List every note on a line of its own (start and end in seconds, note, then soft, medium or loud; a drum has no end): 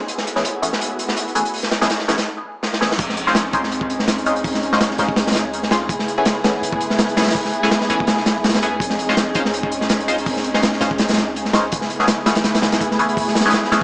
0.00 2.22 G#4 medium
0.08 2.24 A3 medium
0.08 2.24 B3 medium
0.08 2.24 E4 medium
0.08 2.24 F#4 medium
0.08 closed hi-hat medium
0.18 snare soft
0.27 closed hi-hat medium
0.36 0.43 E3 medium
0.36 0.43 A3 medium
0.36 0.43 B3 medium
0.36 0.43 C#4 medium
0.36 0.43 G#4 loud
0.36 snare soft
0.45 closed hi-hat medium
0.62 0.70 E3 medium
0.62 0.70 A3 medium
0.62 0.70 B3 medium
0.62 0.70 C#4 medium
0.62 0.70 G#4 medium
0.62 closed hi-hat medium
0.73 snare medium
0.81 closed hi-hat medium
0.99 closed hi-hat medium
1.08 snare soft
1.16 closed hi-hat medium
1.28 closed hi-hat soft
1.35 1.43 E3 medium
1.35 1.43 A3 medium
1.35 1.43 B3 medium
1.35 1.43 C#4 medium
1.35 1.43 G#4 medium
1.35 closed hi-hat medium
1.45 closed hi-hat soft
1.54 open hi-hat medium
1.63 snare soft
1.71 snare medium
1.71 closed hi-hat medium
1.81 1.88 E3 medium
1.81 1.88 A3 medium
1.81 1.88 B3 medium
1.81 1.88 C#4 medium
1.81 1.88 G#4 loud
1.81 snare loud
1.81 closed hi-hat medium
1.90 snare loud
1.90 closed hi-hat medium
1.99 snare medium
2.08 2.16 E3 loud
2.08 2.16 A3 medium
2.08 2.16 B3 medium
2.08 2.16 C#4 medium
2.08 2.16 G#4 loud
2.08 snare medium
2.08 closed hi-hat medium
2.18 snare medium
2.18 closed hi-hat medium
2.63 snare medium
2.73 snare medium
2.81 2.93 E3 medium
2.81 2.93 A3 medium
2.81 2.93 B3 medium
2.81 2.93 C#4 medium
2.81 2.93 G#4 medium
2.81 snare medium
2.91 snare medium
2.99 3.55 A#1 medium
2.99 5.87 C4 medium
2.99 5.87 C#4 medium
2.99 5.87 D#4 medium
2.99 11.68 G#4 medium
2.99 kick loud
2.99 closed hi-hat medium
2.99 crash medium
3.09 snare medium
3.17 closed hi-hat medium
3.27 3.34 G#3 loud
3.27 3.34 C#4 medium
3.27 3.34 D#4 medium
3.27 3.34 F4 medium
3.27 3.34 C5 loud
3.27 snare soft
3.35 snare loud
3.35 closed hi-hat medium
3.53 4.98 C#2 loud
3.53 3.61 G#3 medium
3.53 3.61 C#4 medium
3.53 3.61 D#4 medium
3.53 3.61 F4 medium
3.53 3.61 C5 medium
3.53 kick medium
3.53 closed hi-hat medium
3.63 snare medium
3.72 closed hi-hat medium
3.81 kick medium
3.90 closed hi-hat medium
3.99 snare soft
4.08 snare loud
4.08 closed hi-hat loud
4.18 closed hi-hat soft
4.26 4.34 G#3 medium
4.26 4.34 C#4 medium
4.26 4.34 D#4 medium
4.26 4.34 F4 medium
4.26 4.34 C5 loud
4.26 closed hi-hat medium
4.36 closed hi-hat soft
4.44 kick loud
4.44 open hi-hat medium
4.54 snare medium
4.63 closed hi-hat medium
4.73 4.79 G#3 loud
4.73 4.79 C#4 medium
4.73 4.79 D#4 medium
4.73 4.79 F4 loud
4.73 4.79 C5 loud
4.73 snare medium
4.81 snare loud
4.81 closed hi-hat medium
4.91 snare medium
4.98 5.88 C#2 loud
4.98 5.07 G#3 loud
4.98 5.07 C#4 medium
4.98 5.07 D#4 medium
4.98 5.07 F4 medium
4.98 5.07 C5 loud
4.98 snare medium
4.98 closed hi-hat medium
5.09 kick loud
5.16 snare loud
5.16 closed hi-hat medium
5.27 snare loud
5.27 closed hi-hat medium
5.31 snare medium
5.31 closed hi-hat medium
5.35 snare loud
5.35 closed hi-hat medium
5.53 closed hi-hat medium
5.63 snare soft
5.71 5.84 G#3 medium
5.71 5.84 C#4 medium
5.71 5.84 D#4 medium
5.71 5.84 F4 medium
5.71 5.84 C5 medium
5.71 snare medium
5.71 closed hi-hat medium
5.89 6.46 F#1 loud
5.89 8.78 A3 medium
5.89 8.78 B3 medium
5.89 8.78 E4 medium
5.89 kick loud
5.89 closed hi-hat medium
5.99 snare medium
6.08 closed hi-hat medium
6.18 6.24 E3 loud
6.18 6.24 A3 medium
6.18 6.24 B3 medium
6.18 6.24 C#4 medium
6.18 6.24 G#4 loud
6.25 snare loud
6.25 closed hi-hat medium
6.44 6.61 A1 loud
6.44 6.52 E3 medium
6.44 6.52 A3 medium
6.44 6.52 B3 medium
6.44 6.52 C#4 medium
6.44 6.52 G#4 medium
6.44 snare loud
6.44 closed hi-hat medium
6.62 6.79 F#1 medium
6.62 closed hi-hat medium
6.72 kick loud
6.81 7.52 F#1 medium
6.81 closed hi-hat medium
6.90 snare medium
6.98 snare loud
6.98 closed hi-hat medium
7.09 closed hi-hat soft
7.17 7.25 E3 medium
7.17 7.25 A3 medium
7.17 7.25 B3 medium
7.17 7.25 C#4 medium
7.17 7.25 G#4 loud
7.17 snare medium
7.17 closed hi-hat medium
7.22 snare medium
7.22 closed hi-hat medium
7.26 snare medium
7.26 closed hi-hat medium
7.31 snare medium
7.31 closed hi-hat medium
7.35 kick loud
7.35 open hi-hat medium
7.45 snare soft
7.53 closed hi-hat medium
7.63 7.70 E3 loud
7.63 7.70 A3 loud
7.63 7.70 B3 loud
7.63 7.70 C#4 medium
7.63 7.70 G#4 loud
7.63 snare medium
7.71 snare loud
7.71 closed hi-hat medium
7.81 snare medium
7.89 8.07 A1 loud
7.89 7.98 E3 medium
7.89 7.98 A3 medium
7.89 7.98 B3 medium
7.89 7.98 C#4 medium
7.89 7.98 G#4 loud
7.89 closed hi-hat medium
8.00 kick medium
8.07 8.38 E1 loud
8.07 snare loud
8.07 closed hi-hat medium
8.17 snare medium
8.26 snare loud
8.26 closed hi-hat medium
8.36 8.79 C#2 loud
8.44 snare medium
8.44 closed hi-hat medium
8.49 snare medium
8.49 closed hi-hat medium
8.54 snare loud
8.54 closed hi-hat medium
8.62 8.75 E3 medium
8.62 8.75 A3 medium
8.62 8.75 B3 medium
8.62 8.75 C#4 medium
8.62 8.75 G#4 medium
8.62 closed hi-hat medium
8.80 9.37 A#1 medium
8.80 11.69 C4 medium
8.80 11.69 C#4 medium
8.80 11.69 D#4 medium
8.80 kick loud
8.80 closed hi-hat medium
8.90 snare medium
8.99 closed hi-hat medium
9.09 9.15 G#3 loud
9.09 9.15 C#4 medium
9.09 9.15 D#4 medium
9.09 9.15 F4 medium
9.09 9.15 C5 loud
9.09 snare soft
9.17 snare loud
9.17 closed hi-hat medium
9.35 10.79 C#2 loud
9.35 9.43 G#3 medium
9.35 9.43 C#4 medium
9.35 9.43 D#4 medium
9.35 9.43 F4 medium
9.35 9.43 C5 medium
9.35 kick loud
9.35 closed hi-hat medium
9.45 snare medium
9.54 closed hi-hat loud
9.63 kick medium
9.72 closed hi-hat medium
9.81 snare medium
9.89 snare loud
9.89 closed hi-hat loud
10.00 closed hi-hat soft
10.08 10.16 G#3 medium
10.08 10.16 C#4 medium
10.08 10.16 D#4 medium
10.08 10.16 F4 medium
10.08 10.16 C5 loud
10.08 closed hi-hat medium
10.18 closed hi-hat soft
10.26 kick medium
10.26 open hi-hat medium
10.36 snare soft
10.44 closed hi-hat medium
10.54 10.61 G#3 loud
10.54 10.61 C#4 loud
10.54 10.61 D#4 medium
10.54 10.61 F4 medium
10.54 10.61 C5 loud
10.54 snare medium
10.62 snare loud
10.62 closed hi-hat medium
10.73 snare medium
10.81 11.70 C#2 loud
10.81 10.89 G#3 loud
10.81 10.89 C#4 medium
10.81 10.89 D#4 medium
10.81 10.89 F4 medium
10.81 10.89 C5 loud
10.81 snare medium
10.81 closed hi-hat medium
10.91 kick medium
10.98 snare loud
10.98 closed hi-hat medium
11.08 snare loud
11.08 closed hi-hat medium
11.13 snare loud
11.13 closed hi-hat medium
11.17 snare loud
11.17 closed hi-hat medium
11.36 closed hi-hat medium
11.45 snare soft
11.53 11.66 G#3 medium
11.53 11.66 C#4 medium
11.53 11.66 D#4 medium
11.53 11.66 F4 medium
11.53 11.66 C5 medium
11.53 snare loud
11.53 closed hi-hat medium
11.72 12.28 F#1 loud
11.72 13.84 A3 medium
11.72 13.84 B3 medium
11.72 13.84 E4 medium
11.72 13.84 G#4 medium
11.72 kick loud
11.72 closed hi-hat medium
11.81 snare medium
11.90 closed hi-hat medium
11.99 12.06 E3 loud
11.99 12.06 A3 medium
11.99 12.06 B3 medium
11.99 12.06 C#4 medium
11.99 12.06 G#4 loud
11.99 snare soft
12.08 snare loud
12.08 closed hi-hat loud
12.26 12.43 A1 loud
12.26 12.34 E3 medium
12.26 12.34 A3 medium
12.26 12.34 B3 medium
12.26 12.34 C#4 medium
12.26 12.34 G#4 medium
12.26 snare loud
12.26 closed hi-hat medium
12.35 snare loud
12.35 closed hi-hat medium
12.44 12.61 F#1 medium
12.44 snare loud
12.44 closed hi-hat medium
12.55 snare loud
12.55 closed hi-hat medium
12.62 13.34 F#1 loud
12.62 snare loud
12.62 closed hi-hat medium
12.72 snare loud
12.72 closed hi-hat medium
12.81 kick medium
12.81 closed hi-hat medium
12.91 snare soft
12.99 13.07 E3 medium
12.99 13.07 A3 medium
12.99 13.07 B3 medium
12.99 13.07 C#4 medium
12.99 13.07 G#4 loud
12.99 closed hi-hat medium
13.09 closed hi-hat soft
13.17 kick loud
13.17 open hi-hat medium
13.28 snare soft
13.35 snare medium
13.35 closed hi-hat medium
13.39 snare loud
13.39 closed hi-hat medium
13.45 13.52 E3 loud
13.45 13.52 A3 medium
13.45 13.52 B3 loud
13.45 13.52 C#4 medium
13.45 13.52 G#4 loud
13.45 snare loud
13.45 closed hi-hat medium
13.50 snare medium
13.50 closed hi-hat medium
13.53 snare loud
13.53 closed hi-hat medium
13.64 snare medium
13.72 13.84 A1 loud
13.72 13.80 E3 loud
13.72 13.80 A3 medium
13.72 13.80 B3 medium
13.72 13.80 C#4 medium
13.72 13.80 G#4 loud
13.72 snare medium
13.72 closed hi-hat medium